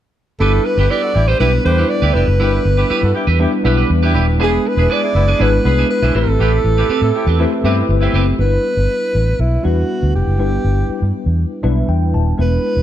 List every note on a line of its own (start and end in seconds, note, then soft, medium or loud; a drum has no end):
0.40 0.58 G1 medium
0.40 1.14 G3 medium
0.40 1.14 B3 medium
0.40 1.15 D4 medium
0.40 0.60 E4 medium
0.40 1.15 E4 medium
0.40 0.60 G4 medium
0.40 0.53 G4 medium
0.40 0.67 A4 medium
0.40 0.60 B4 medium
0.40 1.15 B4 medium
0.40 0.52 B4 medium
0.54 muted clean electric guitar stroke soft
0.65 0.92 B4 medium
0.65 muted clean electric guitar stroke soft
0.77 0.86 G1 loud
0.77 0.88 E4 medium
0.77 0.89 E4 medium
0.77 0.88 G4 medium
0.77 0.90 G4 medium
0.77 0.91 B4 medium
0.77 0.88 B4 medium
0.90 1.10 E4 medium
0.90 1.02 G4 medium
0.90 1.01 B4 medium
0.90 1.29 D5 medium
1.03 1.13 D4 medium
1.03 1.13 F#4 medium
1.03 1.13 A4 medium
1.03 muted clean electric guitar stroke soft
1.15 1.33 A1 medium
1.15 1.25 D4 medium
1.15 1.25 E4 medium
1.15 1.25 G4 medium
1.15 muted clean electric guitar stroke soft
1.28 1.39 E4 medium
1.28 1.40 G4 medium
1.28 1.41 B4 medium
1.28 1.39 C5 medium
1.39 1.57 B1 medium
1.39 1.58 G3 medium
1.39 1.59 B3 medium
1.39 1.59 D4 medium
1.39 1.50 D4 medium
1.39 1.50 E4 medium
1.39 1.59 E4 medium
1.39 1.60 E4 medium
1.39 1.50 G4 medium
1.39 1.53 G4 medium
1.39 1.63 B4 medium
1.39 1.59 B4 medium
1.39 1.52 B4 medium
1.53 muted clean electric guitar stroke soft
1.64 1.83 E2 medium
1.64 2.21 G3 medium
1.64 2.21 B3 medium
1.64 2.21 D4 medium
1.64 1.85 E4 medium
1.64 2.21 E4 medium
1.64 1.85 G4 medium
1.64 1.71 A4 medium
1.64 1.85 B4 medium
1.64 1.91 C5 medium
1.64 muted clean electric guitar stroke soft
1.72 2.24 B4 medium
1.78 1.89 E4 medium
1.78 1.90 G4 medium
1.78 1.90 B4 medium
1.89 2.15 D5 medium
1.89 muted clean electric guitar stroke soft
2.02 2.11 D2 medium
2.02 2.22 D4 medium
2.02 2.22 E4 medium
2.02 2.14 E4 medium
2.02 2.23 G4 medium
2.02 2.15 G4 medium
2.02 2.16 B4 medium
2.14 2.23 F1 medium
2.14 2.32 E4 medium
2.14 2.28 G4 medium
2.14 3.64 B4 medium
2.14 2.27 D5 medium
2.27 2.40 F#1 medium
2.27 muted clean electric guitar stroke soft
2.40 2.57 G1 medium
2.40 3.14 G3 medium
2.40 3.14 B3 medium
2.40 3.15 D4 medium
2.40 2.60 E4 medium
2.40 3.15 E4 medium
2.40 2.61 E4 medium
2.40 2.53 G4 medium
2.40 2.60 G4 medium
2.40 2.46 A#4 medium
2.40 2.61 B4 medium
2.40 2.52 B4 medium
2.47 3.18 B4 medium
2.53 muted clean electric guitar stroke soft
2.65 2.83 G1 medium
2.65 muted clean electric guitar stroke soft
2.77 2.88 E4 medium
2.77 2.89 E4 soft
2.77 2.87 G4 medium
2.77 2.90 G4 medium
2.77 2.90 B4 medium
2.77 2.88 B4 medium
2.90 3.10 E4 medium
2.90 3.03 G4 medium
2.90 3.01 B4 loud
2.90 muted fingered electric bass stroke soft
3.03 3.12 G2 loud
3.03 3.13 D4 medium
3.03 3.13 F#4 medium
3.03 3.13 A4 medium
3.03 muted clean electric guitar stroke soft
3.15 3.25 D4 medium
3.15 3.25 E4 medium
3.15 3.25 G4 medium
3.15 muted clean electric guitar stroke soft
3.27 3.45 E2 medium
3.27 3.39 E4 medium
3.27 3.40 G4 medium
3.27 3.40 B4 medium
3.39 3.58 G3 medium
3.39 3.58 B3 medium
3.39 3.58 D4 medium
3.39 3.50 D4 medium
3.39 3.59 E4 medium
3.39 3.50 E4 medium
3.39 3.50 G4 medium
3.39 3.59 B4 medium
3.39 muted clean electric guitar stroke soft
3.53 muted clean electric guitar stroke soft
3.64 3.82 B1 medium
3.64 4.20 G3 medium
3.64 4.20 B3 medium
3.64 4.21 D4 medium
3.64 4.21 E4 medium
3.64 3.77 E4 medium
3.64 3.85 E4 medium
3.64 3.85 G4 medium
3.64 3.77 G4 medium
3.64 4.21 B4 medium
3.64 3.85 B4 medium
3.64 3.76 B4 medium
3.77 3.89 E4 medium
3.77 3.90 G4 medium
3.77 3.91 B4 medium
3.90 4.16 E2 medium
3.90 muted clean electric guitar stroke soft
4.03 4.23 D4 medium
4.03 4.23 E4 medium
4.03 4.13 E4 medium
4.03 4.14 G4 medium
4.03 4.23 G4 loud
4.03 4.15 B4 medium
4.15 4.40 D#1 medium
4.15 4.35 E4 medium
4.15 4.27 G4 medium
4.15 4.26 B4 medium
4.27 muted clean electric guitar stroke medium
4.39 4.57 E1 medium
4.39 5.14 G#3 medium
4.39 5.14 B3 medium
4.39 5.14 D4 medium
4.39 4.60 D4 medium
4.39 4.60 E4 medium
4.39 5.14 E4 medium
4.39 4.60 G#4 medium
4.39 4.52 G#4 medium
4.39 4.60 B4 medium
4.39 5.15 B4 medium
4.39 4.51 B4 medium
4.43 4.70 G#4 medium
4.52 muted clean electric guitar stroke soft
4.66 4.94 B4 medium
4.66 muted clean electric guitar stroke medium
4.77 4.86 E1 medium
4.77 4.89 D4 soft
4.77 4.87 E4 medium
4.77 4.87 G#4 medium
4.77 4.89 G#4 medium
4.77 4.87 B4 medium
4.77 4.90 B4 medium
4.90 5.10 D4 medium
4.90 5.03 G#4 medium
4.90 5.02 B4 loud
4.90 5.44 D5 loud
5.02 5.12 D4 medium
5.02 5.12 E4 medium
5.02 5.12 G#4 medium
5.02 muted clean electric guitar stroke soft
5.15 5.32 F#1 medium
5.15 5.25 G#3 medium
5.15 5.25 B3 medium
5.15 5.25 E4 medium
5.15 muted clean electric guitar stroke soft
5.28 5.38 D4 soft
5.28 5.39 G#4 medium
5.28 5.40 B4 medium
5.39 5.57 G#1 medium
5.39 5.58 G#3 medium
5.39 5.50 G#3 medium
5.39 5.58 B3 medium
5.39 5.50 B3 medium
5.39 5.58 D4 medium
5.39 5.60 D4 medium
5.39 5.50 E4 medium
5.39 5.58 E4 medium
5.39 5.53 G#4 medium
5.39 5.59 B4 medium
5.39 5.52 B4 medium
5.39 5.90 B4 medium
5.53 muted clean electric guitar stroke soft
5.64 5.82 C2 medium
5.64 6.14 G#3 medium
5.64 6.15 B3 medium
5.64 6.15 D4 medium
5.64 5.85 E4 medium
5.64 6.14 E4 medium
5.64 5.85 G#4 medium
5.64 5.85 B4 medium
5.64 6.14 B4 medium
5.64 muted clean electric guitar stroke soft
5.78 5.89 D4 medium
5.78 5.90 G#4 medium
5.78 5.90 B4 medium
5.90 6.18 B4 medium
5.90 muted clean electric guitar stroke soft
6.02 6.11 B1 medium
6.02 6.22 E3 medium
6.02 6.22 C4 medium
6.02 6.14 D4 medium
6.02 6.22 E4 loud
6.02 6.15 G#4 medium
6.02 6.16 B4 medium
6.14 6.24 A1 medium
6.14 6.95 A3 medium
6.14 6.95 C4 medium
6.14 6.32 C4 medium
6.14 6.95 E4 medium
6.14 6.95 G4 medium
6.14 6.27 G4 medium
6.14 7.90 A4 medium
6.14 6.95 B4 medium
6.14 6.27 C5 medium
6.27 6.36 G#1 medium
6.27 muted clean electric guitar stroke soft
6.39 6.57 A1 loud
6.39 6.60 C4 medium
6.39 6.60 E4 medium
6.39 6.60 G4 medium
6.39 6.53 G4 medium
6.39 6.60 B4 medium
6.39 6.52 B4 medium
6.53 muted clean electric guitar stroke soft
6.64 6.82 A1 medium
6.64 muted clean electric guitar stroke soft
6.77 6.88 C4 soft
6.77 6.87 E4 medium
6.77 6.87 G4 medium
6.77 6.89 G4 medium
6.77 6.89 B4 medium
6.77 6.88 B4 medium
6.89 7.10 C4 medium
6.89 7.02 G4 medium
6.89 7.01 B4 medium
6.89 muted fingered electric bass stroke soft
7.02 7.11 A2 medium
7.02 7.12 C4 medium
7.02 7.12 E4 medium
7.02 7.12 A4 medium
7.02 muted clean electric guitar stroke soft
7.15 7.25 C4 medium
7.15 7.25 E4 medium
7.15 7.25 G4 medium
7.15 muted clean electric guitar stroke soft
7.27 7.44 E2 medium
7.27 7.45 C4 medium
7.27 7.45 G4 medium
7.27 7.44 B4 medium
7.39 7.49 E3 medium
7.39 7.58 A3 medium
7.39 7.49 C4 medium
7.39 7.58 C4 medium
7.39 7.49 E4 medium
7.39 7.58 E4 medium
7.39 7.59 G4 medium
7.39 7.59 B4 medium
7.53 muted clean electric guitar stroke soft
7.63 7.81 G2 medium
7.63 8.20 A3 medium
7.63 7.71 B3 medium
7.63 7.84 C4 medium
7.63 7.85 C4 medium
7.63 7.84 E4 medium
7.63 8.21 E4 medium
7.63 7.84 G4 medium
7.63 8.21 G4 medium
7.63 7.77 G4 medium
7.63 8.21 B4 medium
7.63 7.76 B4 medium
7.70 8.23 C4 medium
7.77 muted clean electric guitar stroke soft
7.89 8.06 G1 medium
7.89 muted clean electric guitar stroke soft
8.01 8.21 E3 medium
8.01 8.21 C4 medium
8.01 8.13 C4 medium
8.01 8.21 E4 loud
8.01 8.14 G4 medium
8.01 8.15 B4 medium
8.13 8.31 F#1 medium
8.13 8.34 C4 medium
8.13 8.27 G4 medium
8.13 8.26 B4 medium
8.27 muted clean electric guitar stroke soft
8.38 8.56 G1 medium
8.38 9.13 G3 medium
8.38 9.14 B3 medium
8.38 9.14 D4 medium
8.38 9.14 E4 medium
8.38 8.46 A#4 soft
8.38 9.42 B4 medium
8.46 9.17 B4 medium
8.77 8.86 G1 medium
9.15 9.32 A1 medium
9.39 9.57 B1 medium
9.39 9.66 E4 medium
9.63 9.82 E2 medium
9.63 10.20 G3 medium
9.63 10.20 B3 medium
9.63 10.20 D4 medium
9.63 10.20 E4 medium
9.63 10.14 F#4 medium
9.63 10.20 B4 medium
10.03 10.11 D2 medium
10.15 10.24 F1 medium
10.15 11.11 G4 medium
10.27 10.39 F#1 medium
10.38 10.57 G1 medium
10.38 11.13 G3 medium
10.38 11.14 B3 medium
10.38 11.14 D4 medium
10.38 11.14 E4 medium
10.38 11.14 B4 medium
10.64 10.82 G1 medium
10.89 muted fingered electric bass stroke soft
11.02 11.11 G2 medium
11.26 11.44 E2 medium
11.63 11.81 B1 medium
11.63 12.19 G3 medium
11.63 12.20 B3 medium
11.63 12.20 D4 medium
11.63 12.20 E4 medium
11.63 12.20 B4 medium
11.63 11.87 E5 medium
11.88 12.16 E2 medium
11.88 12.12 G5 medium
12.14 12.32 D#1 medium
12.14 12.37 A5 medium
12.37 12.56 E1 medium
12.37 12.83 G#3 medium
12.37 12.83 B3 medium
12.37 12.83 D4 medium
12.37 12.83 E4 medium
12.37 12.83 B4 medium
12.77 12.83 E1 medium